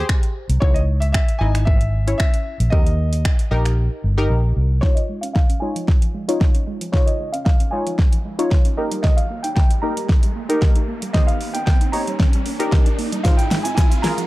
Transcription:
Already playing: G4 G#4 C5
0.09 finger snap, kick
0.23 closed hi-hat
0.49 C2, closed hi-hat
0.60 C#2 D#4 E4 C#5, kick
0.74 D#5, closed hi-hat
1.00 E5, closed hi-hat
1.12 E5, finger snap, kick
1.29 closed hi-hat
1.39 G#1 D#4 E4 D#5 G#5
1.55 finger snap, closed hi-hat
1.65 E5, kick
1.81 closed hi-hat
2.07 C#4 E4 C#5, closed hi-hat
2.18 E5, finger snap, kick
2.34 closed hi-hat
2.60 A#1, closed hi-hat
2.70 D#2 D#4 G4 A#4 D#5, kick
2.87 closed hi-hat
3.13 closed hi-hat
3.25 finger snap, kick
3.39 closed hi-hat
3.51 A#1 D#4 G4 A#4
3.65 finger snap, closed hi-hat
4.04 G1
4.18 D#4 G4 A#4
4.30 A#1
4.56 C2
4.81 C#3 D#4 F4 C#5, kick, snare, riser
4.95 D#5, closed hi-hat
5.09 G#3
5.21 C#4 F5, closed hi-hat
5.33 D#4 F5, kick, snare
5.49 C#4, closed hi-hat
5.60 G#3 D#4 F4 C#5 G#5
5.76 F3, closed hi-hat
5.88 kick, snare
6.02 F3, closed hi-hat
6.15 G#3
6.28 C#4 D#4 F4 C#5, closed hi-hat
6.41 kick, snare
6.55 C#4, closed hi-hat
6.67 G#3
6.81 F3, closed hi-hat
6.92 C#3 D#4 F4 C#5, kick, snare
7.06 D#5, closed hi-hat
7.20 G#3
7.32 C#4 F5, closed hi-hat
7.45 D#4 F5, kick, snare
7.60 C#4, closed hi-hat
7.71 G#3 D#4 F4 C#5 G#5
7.87 F3, closed hi-hat
7.99 kick, snare
8.13 F3, closed hi-hat
8.25 G#3
8.39 C#4 D#4 F4 C#5, closed hi-hat
8.51 D#4, kick, snare
8.65 C#4, closed hi-hat
8.77 A#3 D#4 G4 A#4
8.91 G3, closed hi-hat
9.02 D#3 D#5, kick, snare
9.17 F5, closed hi-hat
9.30 A#3
9.43 D#4 G5, closed hi-hat
9.55 D#5 G5, kick, snare
9.71 D#4, closed hi-hat
9.82 A#3 D#4 G4 A#4 A#5
9.97 G3, closed hi-hat
10.09 kick, snare
10.23 G3, closed hi-hat
10.36 A#3
10.49 D#4 G4 A#4, closed hi-hat
10.62 D#5, kick, snare
10.76 D#4, closed hi-hat
10.88 A#3
11.02 G3, closed hi-hat
11.13 D#3 D#4 G4 C5 D#5, kick, snare
11.27 F5, closed hi-hat
11.41 A#3, open hi-hat
11.53 D#4 G5, closed hi-hat
11.66 D#5 G5, kick, snare
11.81 D#4, closed hi-hat
11.92 A#3 D#4 G4 C#5 A#5, open hi-hat
12.08 G3, closed hi-hat
12.20 kick, snare
12.33 G3, closed hi-hat
12.46 A#3, open hi-hat
12.59 D#4 G4 A#4, closed hi-hat
12.72 D#5, kick, snare
12.86 D#4, closed hi-hat
12.99 A#3, open hi-hat
13.12 G3, closed hi-hat
13.23 G#2 F4 G#4 C5 F5, kick, snare, shaker
13.37 G5, closed hi-hat, shaker
13.51 G#3, snare, open hi-hat, shaker
13.63 C4 G#5, closed hi-hat, shaker
13.75 D#4 G#5, kick, snare, shaker
13.91 C4, closed hi-hat, shaker
14.02 G#3 F4 G#4 A#4 A#5, snare, open hi-hat, shaker
14.18 F3, closed hi-hat, shaker

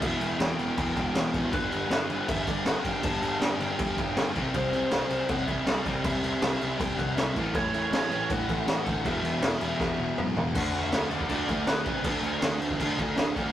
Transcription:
0.01 E1 E2 B2 E3 E5, kick, crash
0.21 E1 E2 B2 E3, crash
0.39 E1 E2 B2 E3 G5, snare, crash
0.58 E1 E2 B2 E3, crash
0.77 E1 E2 B2 E3, kick, crash
0.96 E1 E2 B2 E3, kick, crash
1.15 E1 E2 B2 E3, snare, crash
1.33 A1 E2 B2 E3, kick, crash
1.52 G1 G2 D3 G3 B4, kick, crash
1.71 G1 G2 D3 G3, crash
1.90 G1 G2 D3 G3 B4, snare, crash
2.09 G1 G2 D3 G3, crash
2.28 E2 G2 D3 G3 E5, kick, crash
2.46 G1 G2 D3 G3 D5, kick, crash
2.66 G1 G2 D3 G3 F#5, snare, crash
2.84 G1 G2 D3 G3 G5, kick, crash
3.03 G1 G2 D3 G3 A5, kick, crash
3.22 G1 G2 D3 G3, crash
3.40 G1 G2 D3 G3 G5, snare, crash
3.60 G1 G2 D3 G3, crash
3.79 G1 G2 D3 G3, kick, crash
3.97 G1 G2 D3 G3, kick, crash
4.16 G1 G2 D3 G3, snare, crash
4.35 C2 C3 G3 C4, kick, crash
4.54 C2 C3 G3 C4 C5, kick, crash
4.73 C2 C3 G3 C4, crash
4.91 C2 C3 G3 C4 C5, snare, crash
5.09 C2 C3 G3 C4, crash
5.28 A2 C3 G3 C4 F#5, kick, crash
5.46 C2 C3 G3 C4 E5, kick, crash
5.66 C2 C3 G3 C4 D5, snare, crash
5.85 C2 C3 G3 C4, kick, crash
6.04 C2 C3 G3 C4 E5, kick, crash
6.23 C2 C3 G3 C4, crash
6.42 C2 C3 G3 C4 E5, snare, crash
6.60 C2 C3 G3 C4, crash
6.77 C2 C3 G3 C4 G5, kick, crash
6.97 C2 C3 G3 C4 F#5, kick, crash
7.15 C2 C3 G3 C4 E5, snare, crash
7.35 A1 A2 E3 A3, kick, crash
7.54 A1 A2 E3 A3 C#5, kick, crash
7.72 A1 A2 E3 A3, crash
7.91 A1 A2 E3 A3 C#5, snare, crash
8.10 A1 A2 E3 A3, crash
8.30 G2 A2 E3 A3 F#5, kick, crash
8.48 A1 A2 E3 A3, kick, crash
8.66 A1 A2 E3 A3, snare, crash
8.85 D2 A2 E3 A3, kick, crash
9.04 E1 E2 B2 E3 E5, kick, crash
9.22 E1 E2 B2 E3, crash
9.41 E1 E2 B2 E3, snare, crash
9.60 E1 E2 B2 E3, crash
9.78 E1 E2 B2 E3, kick, snare
9.98 E1 E2 B2 E3
10.16 E1 E2 B2 E3, mid tom
10.35 E1 E2 B2 E3, floor tom
10.54 D2 D3 A3 D4 F#5, kick, crash
10.73 D3 A3 D4, crash
10.82 E5
10.91 D2 D3 A3 D4, snare, crash
11.10 D2 D3 A3 D4 D5, crash
11.20 kick
11.29 D2 D3 A3 D4, kick, crash
11.48 D2 D3 A3 D4, kick, crash
11.67 D2 D3 A3 D4 B4, snare, crash
11.85 C3 D3 A3 D4, kick, crash
12.04 D2 D3 A3 D4 A4, kick, crash
12.22 D2 D3 A3 D4, crash
12.41 D2 D3 A3 D4, snare, crash
12.60 D2 D3 A3 D4, crash
12.71 kick
12.79 D2 D3 A3 D4, kick, crash
12.98 D2 D3 A3 D4, kick, crash
13.16 D2 D3 A3 D4, snare, crash
13.35 D2 D3 A3 D4, kick, crash

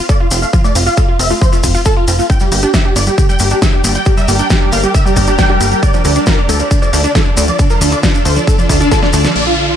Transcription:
0.09 A4 D5, kick, maracas
0.20 F4
0.31 F1 C4 F4, open hi-hat, maracas
0.42 A3 F5, maracas
0.53 F3 F4, kick, maracas
0.64 A3 D5, maracas
0.75 F1 C4 F4, open hi-hat, maracas
0.86 F4 F5, maracas
0.97 F4 A4, kick, maracas
1.08 F4
1.19 F1 C4 E5, open hi-hat, maracas
1.30 A3 F4, maracas
1.41 F3 C5, kick, maracas
1.52 A3 F4, maracas
1.63 F1 C4 F4, kick, open hi-hat, maracas
1.74 F4, maracas
1.85 A4, kick, maracas
1.97 F4
2.08 F1 C4 F4, open hi-hat, maracas
2.19 A3 F4, maracas
2.30 D3 G3 G4 A#4 D5 G5, kick, closed hi-hat, maracas
2.40 G3 G4, maracas
2.52 G1 A#3 G4, open hi-hat, maracas
2.62 D4 G4, closed hi-hat, maracas
2.74 G4 E5, kick, snare, closed hi-hat, maracas
2.85 D4 G4
2.96 G1 A#3 D5, open hi-hat, maracas
3.07 G3 G4, closed hi-hat, maracas
3.18 D3 G4, kick, closed hi-hat, maracas
3.29 G3 G5, maracas
3.39 G1 A#3 G4, open hi-hat, maracas
3.51 D4 G4, maracas
3.62 G4 E5, kick, snare, closed hi-hat, maracas
3.73 D4 G4
3.84 G1 A#3 G4, open hi-hat, maracas
3.95 G3 G5, closed hi-hat, maracas
4.05 D3 G4, kick, closed hi-hat, maracas
4.17 G3 E5, maracas
4.28 G1 A#3 G4, open hi-hat, maracas
4.39 D4 G5, closed hi-hat, maracas
4.50 G4, kick, snare, closed hi-hat, maracas
4.61 D4 G4
4.72 G1 A#3 F5, open hi-hat, maracas
4.83 G3 G4, closed hi-hat, maracas
4.94 D3 E5, kick, closed hi-hat, maracas
5.05 G3 G4, maracas
5.16 G1 A#3 G4, kick, open hi-hat, maracas
5.27 D4 G4, closed hi-hat, maracas
5.38 G4 G5, kick, snare, closed hi-hat, maracas
5.50 D4 G4
5.61 G1 A#3 G4, open hi-hat, maracas
5.72 G3 G4, closed hi-hat, maracas
5.83 D3 D4 F4 A4 D5, kick, closed hi-hat, maracas
5.94 F3 D4, maracas
6.04 D2 A3 D4, open hi-hat, maracas
6.15 D4, closed hi-hat, maracas
6.26 F4 A#4, kick, snare, closed hi-hat, maracas
6.38 D4
6.49 D2 A3 A4, open hi-hat, maracas
6.59 F3 D4, closed hi-hat, maracas
6.71 D3 D4, kick, closed hi-hat, maracas
6.82 F3 D5, maracas
6.93 D2 A3 D4, open hi-hat, maracas
7.04 D4, closed hi-hat, maracas
7.15 F4 A4, kick, snare, closed hi-hat, maracas
7.26 D4
7.37 D2 A3 D4, open hi-hat, maracas
7.48 F3 D5, closed hi-hat, maracas
7.59 D3 D4, kick, closed hi-hat, maracas
7.70 F3 A#4, maracas
7.81 D2 A3 D4, open hi-hat, maracas
7.92 D4 D5, closed hi-hat, maracas
8.03 D4 F4, kick, snare, closed hi-hat, maracas
8.14 D4, maracas
8.25 D2 A3 C5, open hi-hat, maracas
8.36 F3 D4, closed hi-hat, maracas
8.47 D3 A4, kick, closed hi-hat, maracas
8.58 F3 D4, maracas
8.69 D2 A3 D4, kick, open hi-hat, maracas
8.80 D4, closed hi-hat, maracas
8.91 F4 A4, kick, snare, closed hi-hat, maracas
9.03 D4, snare
9.13 D2 A3 D4, open hi-hat, maracas
9.25 F3 D4, snare, closed hi-hat, maracas
9.36 A#1 A#3 D4 F4 D5, crash, downlifter
9.47 F4
9.58 F4
9.69 F4

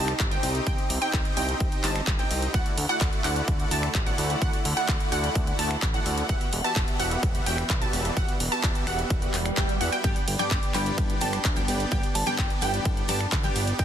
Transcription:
Already playing: C2 C3 C4 D#4 G4 D#5 A5
0.08 finger snap, closed hi-hat
0.20 G1, kick, clap, closed hi-hat
0.31 C4 D#4 G4 D#5 G5, closed hi-hat
0.43 C2, open hi-hat
0.55 closed hi-hat
0.67 C2 C4 G4 G5, kick, closed hi-hat
0.78 closed hi-hat
0.90 C2, open hi-hat
1.02 C4 D#4 G4 D#5 G5, closed hi-hat
1.13 C2, kick, clap, closed hi-hat
1.25 closed hi-hat
1.37 C2 C4 D#4 G4 D#5 G5, open hi-hat
1.49 closed hi-hat
1.60 C2, kick, closed hi-hat
1.72 closed hi-hat
1.84 G1 C4 D#4 G4 D#5 A5, clap, open hi-hat
1.96 finger snap, closed hi-hat
2.07 G1, kick, clap, closed hi-hat
2.19 C4 D#4 G4 D#5 G5, closed hi-hat
2.31 C2, open hi-hat
2.42 closed hi-hat
2.54 D2 D3 A3 E4 F#4 D5 F#5, kick, closed hi-hat
2.66 closed hi-hat
2.78 D2, open hi-hat
2.89 A3 E4 F#4 D5 F#5, closed hi-hat
3.01 D2, kick, clap, closed hi-hat
3.13 closed hi-hat
3.24 D2 A3 E4 F#4 D5 F#5, clap, open hi-hat
3.36 closed hi-hat
3.48 D2, kick, closed hi-hat
3.60 closed hi-hat
3.71 D2 A3 E4 F#4 D5 A5, open hi-hat
3.83 finger snap, closed hi-hat
3.95 A1, kick, clap, closed hi-hat
4.06 A3 E4 F#4 D5 F#5, closed hi-hat
4.18 D2, open hi-hat
4.30 closed hi-hat
4.42 D2 A3 F#5, kick, closed hi-hat
4.53 closed hi-hat
4.65 D2, open hi-hat
4.77 A3 E4 F#4 D5 F#5, closed hi-hat
4.88 D2, kick, clap, closed hi-hat
5.00 closed hi-hat
5.12 D2 A3 E4 F#4 D5 F#5, open hi-hat
5.24 closed hi-hat
5.35 D2, kick, closed hi-hat
5.47 closed hi-hat
5.59 D2 A3 E4 F#4 D5 A5, open hi-hat
5.71 finger snap
5.82 A1, kick, clap, closed hi-hat
5.94 A3 E4 F#4 D5 F#5, closed hi-hat
6.06 D2, open hi-hat
6.18 closed hi-hat
6.29 E1 E3 G3 B3 E5 F#5, kick, closed hi-hat
6.41 closed hi-hat
6.53 E1, open hi-hat
6.64 B3 F#4 G4 E5 A5, closed hi-hat
6.76 E1, kick, clap, closed hi-hat
6.88 closed hi-hat
7.00 E1 B3 F#4 G4 E5 F#5, open hi-hat
7.11 closed hi-hat
7.23 E1, kick, closed hi-hat
7.35 closed hi-hat
7.46 E1 B3 F#4 G4 E5 G5, open hi-hat
7.58 finger snap, closed hi-hat
7.70 B1, kick, clap, closed hi-hat
7.82 B3 F#4 G4 E5 A5, closed hi-hat
7.93 E1, open hi-hat
8.05 closed hi-hat
8.17 E1 B3 F#4 G4 E5 F#5, kick, closed hi-hat
8.29 closed hi-hat
8.40 E1, open hi-hat
8.52 B3 F#4 G4 E5 A5, closed hi-hat
8.63 E1, kick, clap, closed hi-hat
8.75 closed hi-hat
8.87 E1 B3 F#4 G4 E5 F#5, finger snap, open hi-hat
8.99 closed hi-hat
9.10 E1, kick, closed hi-hat, swell
9.22 closed hi-hat
9.34 E1, clap, open hi-hat
9.46 finger snap, closed hi-hat
9.57 E1 B3 F#4 G4 E5 G5, kick, clap, closed hi-hat
9.69 closed hi-hat
9.81 E2 B3 F#4 G4 E5 F#5, open hi-hat
9.92 B3 F#4 G4 E5 G5, closed hi-hat
10.04 G1 G2 D3 G3 B3 D4 G4 D5 G5, kick, closed hi-hat, ride
10.16 closed hi-hat
10.28 G1, open hi-hat, ride
10.39 G2 D3 G3 B3 D4 G4 A4 D5 G5 D6, closed hi-hat
10.51 G1, kick, clap, closed hi-hat, ride
10.63 closed hi-hat
10.74 G1 G2 D3 G3 B3 D4 E4 G4 D5 G5 B5, clap, open hi-hat, ride
10.86 closed hi-hat
10.98 G1, kick, closed hi-hat, ride
11.10 closed hi-hat
11.21 G1 G2 D3 G3 B3 D4 G4 A4 D5 G5 A5, open hi-hat, ride
11.33 finger snap, closed hi-hat
11.45 D2, kick, clap, closed hi-hat, ride
11.56 G2 D3 G3 B3 D4 G4 D5 G5, closed hi-hat
11.68 G1, open hi-hat, ride
11.80 closed hi-hat
11.91 G1 G2 D3 G3 B3 D4 G4 D5 G5, kick, closed hi-hat, ride
12.03 closed hi-hat
12.15 G1 A5, open hi-hat, ride
12.26 G2 D3 G3 B3 D4 G4 A4 D5 G5, closed hi-hat
12.38 G1 G5, kick, clap, closed hi-hat, ride
12.50 closed hi-hat
12.61 G1 G2 D3 G3 B3 D4 E4 G4 D5 G5, open hi-hat, ride
12.74 closed hi-hat
12.85 G1, kick, closed hi-hat, ride
12.97 closed hi-hat
13.08 G1 G2 D3 G3 B3 D4 G4 A4 D5 A5, open hi-hat, ride
13.21 finger snap, closed hi-hat
13.32 D2, kick, clap, closed hi-hat, ride
13.43 G2 D3 G3 B3 D4 G4 D5 G5, closed hi-hat
13.56 G1, open hi-hat, ride
13.67 closed hi-hat
13.78 C2 C3 D#3 G3 C4 D#4 G4 D#5 G5, kick, closed hi-hat, ride

